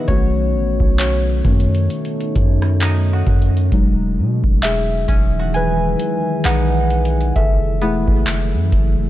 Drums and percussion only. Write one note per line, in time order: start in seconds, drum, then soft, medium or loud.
0.08 kick loud
0.08 closed hi-hat medium
0.80 kick medium
0.99 clap loud
1.45 kick loud
1.45 closed hi-hat medium
1.60 closed hi-hat medium
1.75 closed hi-hat medium
1.90 closed hi-hat soft
2.05 closed hi-hat soft
2.21 closed hi-hat medium
2.36 kick loud
2.36 closed hi-hat medium
2.62 cross-stick medium
2.81 clap loud
2.81 closed hi-hat medium
3.27 kick medium
3.27 closed hi-hat medium
3.42 closed hi-hat medium
3.57 closed hi-hat medium
3.72 kick loud
3.72 closed hi-hat medium
4.44 kick loud
4.63 clap loud
5.08 kick loud
5.08 closed hi-hat medium
5.54 closed hi-hat medium
6.00 closed hi-hat medium
6.45 clap loud
6.45 closed hi-hat medium
6.90 closed hi-hat medium
7.05 closed hi-hat medium
7.21 closed hi-hat soft
7.36 kick loud
7.36 closed hi-hat medium
8.08 kick medium
8.27 clap loud
8.72 kick loud
8.72 closed hi-hat medium